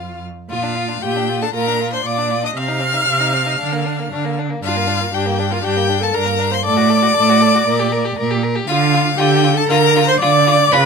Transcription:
Already playing: cello F2, viola F4, violin F5 F6
0.50 cello A#2, viola F4, violin F4 F5
0.63 violin D4
0.76 violin F4
0.89 violin D4
1.02 cello A#2, violin F4 G5, viola G4
1.16 violin D4
1.29 violin F4
1.41 violin D4 A5, viola A4
1.54 cello A#2, violin F4 A#5, viola A#4
1.67 violin D4
1.81 violin F4
1.93 violin D4 C6, viola C5
2.05 cello A#2, violin F4 D6, viola D5
2.18 violin D4
2.31 violin F4
2.44 violin D4 D#6, viola D#5
2.56 cello C3, violin C4 F6, viola F5
2.68 violin D#4
2.80 violin C4
2.94 violin D#4
3.08 cello C3, violin C4
3.20 violin D#4
3.34 violin C4
3.46 violin D#4
3.58 cello D3, violin D4
3.73 violin A#3
3.85 violin D4
3.99 violin A#3
4.12 cello D3, violin D4
4.25 violin A#3
4.39 violin D4
4.50 violin A#3
4.63 cello G2, violin D4 F5, viola F4
4.76 violin A#3
4.87 violin D4
5.00 violin A#3
5.13 cello G2, violin D4 G5, viola G4
5.26 violin A#3
5.39 violin D4
5.51 violin A#3 F5, viola F4
5.63 cello G2, violin D4 G5, viola G4
5.77 violin A#3
5.89 violin D4
6.01 violin A#3 A5, viola A4
6.14 cello G2, violin D4 A#5, viola A#4
6.26 violin A#3
6.39 violin D4
6.51 violin A#3 C6, viola C5
6.64 cello A2, violin A4 D6, viola D5
6.77 violin F#4
6.90 violin A4
7.03 violin F#4
7.16 cello A2, violin A4
7.29 violin F#4
7.41 violin A4
7.55 violin F#4
7.67 cello A#2, violin A#4
7.79 violin G4
7.92 violin A#4
8.05 violin G4
8.18 cello A#2, violin A#4
8.31 violin G4
8.43 violin A#4
8.55 violin G4
8.67 cello D3, viola F4, violin F4 F5
8.94 violin F4
9.17 cello D3, violin F4 G5, viola G4
9.43 violin F4
9.56 viola A4, violin A5
9.69 cello D3, violin F4 A#5, viola A#4
9.96 violin F4
10.08 viola C5, violin C6
10.20 cello D3, violin F4 D6, viola D5
10.47 violin F4
10.72 cello C#3, violin F4 B5, viola B4

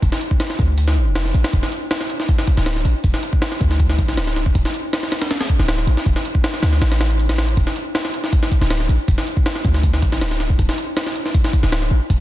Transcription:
0.02 808-style bass D1, kick, closed hi-hat
0.12 snare
0.21 closed hi-hat
0.31 kick
0.40 snare, closed hi-hat
0.50 snare
0.59 808-style bass D2, kick, closed hi-hat
0.78 closed hi-hat
0.88 snare
0.97 808-style bass A1
1.06 808-style bass F1
1.15 snare, closed hi-hat
1.25 snare
1.34 808-style bass A1, closed hi-hat
1.44 snare, closed hi-hat
1.53 808-style bass D1, kick, closed hi-hat
1.63 snare
1.72 closed hi-hat
1.91 snare, closed hi-hat
2.01 snare
2.10 closed hi-hat
2.20 snare
2.28 kick, closed hi-hat
2.38 snare
2.47 kick, closed hi-hat
2.57 808-style bass D1, snare
2.66 snare, closed hi-hat
2.76 snare
2.85 808-style bass A1, closed hi-hat
3.04 808-style bass D1, kick, closed hi-hat
3.14 snare
3.23 closed hi-hat
3.33 kick
3.42 snare, closed hi-hat
3.52 snare
3.61 808-style bass D2, kick, closed hi-hat
3.71 snare
3.80 kick, closed hi-hat
3.90 snare
3.98 808-style bass A1, kick, closed hi-hat
4.08 snare
4.17 808-style bass D1, snare, closed hi-hat
4.27 snare
4.36 snare, closed hi-hat
4.46 kick
4.55 808-style bass D1, kick, closed hi-hat
4.65 snare
4.74 closed hi-hat
4.93 snare, closed hi-hat
5.03 snare
5.12 snare, closed hi-hat
5.22 snare, closed hi-hat
5.31 snare, closed hi-hat
5.41 snare, closed hi-hat
5.50 kick, closed hi-hat
5.59 808-style bass D1, snare
5.68 snare, closed hi-hat
5.78 snare
5.87 808-style bass A1, closed hi-hat
5.97 snare
6.06 808-style bass D1, kick, closed hi-hat
6.16 snare
6.25 closed hi-hat
6.35 kick
6.44 snare, closed hi-hat
6.54 snare
6.62 808-style bass D2, snare, closed hi-hat
6.73 snare
6.81 808-style bass A1, snare, closed hi-hat
6.92 snare, closed hi-hat
7.01 snare, closed hi-hat
7.10 closed hi-hat
7.20 closed hi-hat
7.29 snare, closed hi-hat
7.38 snare, closed hi-hat
7.48 closed hi-hat
7.57 808-style bass D1, kick, closed hi-hat
7.67 snare
7.76 closed hi-hat
7.95 snare, closed hi-hat
8.05 snare
8.14 closed hi-hat
8.24 snare
8.33 kick, closed hi-hat
8.43 snare
8.52 kick, closed hi-hat
8.61 808-style bass D1, snare
8.70 snare, closed hi-hat
8.80 snare
8.89 808-style bass A1, closed hi-hat
9.08 808-style bass D1, kick, closed hi-hat
9.18 snare
9.27 closed hi-hat
9.37 kick
9.46 snare, closed hi-hat
9.56 snare
9.65 808-style bass D2, kick, closed hi-hat
9.74 snare
9.83 kick, closed hi-hat
9.94 snare
10.02 808-style bass A1, kick, closed hi-hat
10.12 snare
10.21 808-style bass D1, snare, closed hi-hat
10.31 snare
10.40 snare, closed hi-hat
10.50 kick
10.59 808-style bass D1, kick, closed hi-hat
10.69 snare
10.78 closed hi-hat
10.97 snare, closed hi-hat
11.07 snare
11.16 closed hi-hat
11.26 snare
11.34 kick, closed hi-hat
11.44 snare
11.53 kick, closed hi-hat
11.63 808-style bass D1, snare
11.72 snare, closed hi-hat
11.82 snare
11.91 808-style bass A1
12.10 808-style bass D1, kick, closed hi-hat

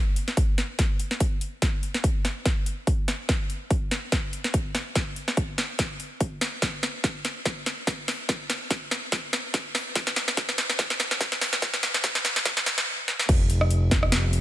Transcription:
0.16 closed hi-hat
0.28 snare
0.37 kick, closed hi-hat
0.58 snare, closed hi-hat
0.79 kick, snare, closed hi-hat
1.00 closed hi-hat
1.11 snare
1.20 kick, closed hi-hat
1.41 closed hi-hat
1.62 kick, snare, closed hi-hat
1.83 closed hi-hat
1.94 snare
2.04 kick, closed hi-hat
2.25 snare, closed hi-hat
2.46 kick, snare, closed hi-hat
2.66 closed hi-hat
2.87 kick, closed hi-hat
3.08 snare, closed hi-hat
3.29 kick, snare, closed hi-hat
3.50 closed hi-hat
3.71 kick, closed hi-hat
3.91 snare, closed hi-hat
4.12 kick, snare, closed hi-hat
4.33 closed hi-hat
4.44 snare
4.54 kick, closed hi-hat
4.75 snare, closed hi-hat
4.95 kick, snare, closed hi-hat
5.16 closed hi-hat
5.28 snare
5.37 kick, closed hi-hat
5.58 snare, closed hi-hat
5.79 kick, snare, closed hi-hat
6.00 closed hi-hat
6.20 kick, closed hi-hat
6.41 snare, closed hi-hat
6.62 kick, snare, closed hi-hat
6.83 snare, closed hi-hat
7.04 kick, snare, closed hi-hat
7.25 snare, closed hi-hat
7.45 kick, snare, closed hi-hat
7.66 snare, closed hi-hat
7.87 kick, snare, closed hi-hat
8.08 snare, open hi-hat
8.29 kick, snare, closed hi-hat
8.50 snare, closed hi-hat
8.71 kick, snare, closed hi-hat
8.91 snare, closed hi-hat
9.12 kick, snare, closed hi-hat
9.33 snare, closed hi-hat
9.54 kick, snare, closed hi-hat
9.75 snare, open hi-hat
9.95 kick, snare, closed hi-hat
10.07 snare
10.16 snare, closed hi-hat
10.28 snare
10.37 kick, snare, closed hi-hat
10.49 snare
10.58 snare, closed hi-hat
10.70 snare
10.79 kick, snare, closed hi-hat
10.90 snare
11.00 snare, closed hi-hat
11.11 snare
11.21 kick, snare, closed hi-hat
11.32 snare
11.41 snare, open hi-hat
11.53 snare
11.62 kick, snare, closed hi-hat
11.74 snare
11.83 snare, closed hi-hat
11.94 snare
12.04 kick, snare, closed hi-hat
12.15 snare
12.25 snare, closed hi-hat
12.36 snare
12.45 kick, snare, closed hi-hat
12.57 snare
12.66 snare, closed hi-hat
12.78 snare
13.08 snare
13.19 snare
13.29 analog synth bass F1, kick, closed hi-hat, crash
13.50 closed hi-hat
13.61 cross-stick
13.71 closed hi-hat
13.91 kick, snare, closed hi-hat
14.03 cross-stick
14.12 snare, closed hi-hat
14.33 closed hi-hat

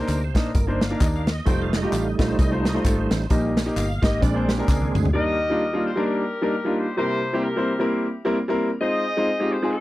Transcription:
Already playing: grand piano C3, tonewheel organ A#4
0.00 grand piano A#3 D4 D#4 C5
0.08 fingered electric bass D2, clap, closed hi-hat, tambourine
0.24 tonewheel organ C5
0.34 fingered electric bass A#1, grand piano A#3 D4 D#4 D#5, kick, snare, closed hi-hat, tambourine
0.55 fingered electric bass G1, tonewheel organ A#4, kick, closed hi-hat, tambourine
0.67 grand piano A#3 D4 D#4 C5, tonewheel organ C5
0.81 tonewheel organ F5, snare, closed hi-hat, tambourine
0.90 grand piano A#3 D4 D#4 A#4
1.01 fingered electric bass D#2, tonewheel organ D#5, kick, clap, closed hi-hat, tambourine
1.16 tonewheel organ F5
1.27 snare, closed hi-hat, tambourine
1.32 tonewheel organ D#5
1.45 fingered electric bass F1, tonewheel organ G3 A3 D#4 G5, grand piano A3 D#4 F4 C5, kick, closed hi-hat, tambourine
1.62 tonewheel organ F5
1.73 snare, clap, closed hi-hat, tambourine
1.77 tonewheel organ D#5
1.82 grand piano A3 D#4 F4 G4
1.92 fingered electric bass A1, tonewheel organ F5, clap, closed hi-hat, tambourine
2.08 tonewheel organ D#5
2.19 fingered electric bass A#1, grand piano A3 D#4 F4 D#5, kick, snare, closed hi-hat, tambourine
2.23 tonewheel organ C5
2.39 fingered electric bass C2, tonewheel organ D#5, kick, closed hi-hat, tambourine
2.51 grand piano A3 D#4 F4 C5, tonewheel organ C5
2.65 tonewheel organ D#5, snare, closed hi-hat, tambourine
2.74 grand piano A3 D#4 F4 C5
2.85 fingered electric bass G#1, tonewheel organ A4, kick, clap, closed hi-hat, tambourine
3.01 tonewheel organ C5
3.11 fingered electric bass A1, snare, closed hi-hat, tambourine
3.30 fingered electric bass A#1, grand piano A#2 A#3 D#4 G4 D#5, tonewheel organ G3 A#3 D#4, kick, closed hi-hat, tambourine
3.57 snare, clap, closed hi-hat, tambourine
3.65 grand piano A#3 D#4 G4 D#5
3.76 fingered electric bass G1, tonewheel organ F5, clap, closed hi-hat, tambourine
4.02 fingered electric bass G#1, grand piano A#3 D#4 G4 D#5, tonewheel organ D#5, kick, snare, closed hi-hat, tambourine
4.21 fingered electric bass A#1, grand piano A#2, tonewheel organ G#3 C4 D4 D5, kick, closed hi-hat, tambourine
4.34 grand piano A#3 D4 G#4 C5
4.49 tonewheel organ G4, snare, closed hi-hat, tambourine
4.58 grand piano A#3 D4 G#4 A#4
4.68 fingered electric bass C#2, tonewheel organ G#4, kick, snare, clap, tambourine
4.82 high tom
4.95 fingered electric bass D2, mid tom, tambourine
5.05 floor tom
5.13 grand piano D#3 G3 A#3 D4 D#4 A#4, horn section G4 A#4 D#5
5.50 grand piano G3 A#3 D4 D#4 F4
5.73 grand piano G3 A#3 D4 D#4 F4
5.86 horn section C5
5.96 grand piano G3 A#3 D4 D#4 A#4
6.06 horn section D4 G4 A#4
6.42 grand piano G3 A#3 D4 D#4 A#4
6.64 grand piano G3 A#3 D4 D#4 F4
6.79 horn section C5
6.97 grand piano C3 G3 A#3 C4 E4 A#4, horn section E4 G4 C5
7.33 grand piano G3 A#3 C4 E4 G4
7.43 horn section E4 G4 A#4
7.56 grand piano G3 A#3 C4 E4 C5
7.79 grand piano G3 A#3 C4 E4 A#4
8.25 grand piano G3 A#3 C4 E4 A#4
8.48 grand piano G3 A#3 C4 E4 A#4
8.81 grand piano G#3 C4 D#4 F4 C5, horn section G#4 C5 D#5
9.17 grand piano G#3 C4 D#4 F4 C5
9.40 grand piano G#3 C4 D#4 F4 G4
9.52 horn section C5
9.62 grand piano G#3 C4 D#4 F4 G#4
9.72 horn section C4 D#4 A4

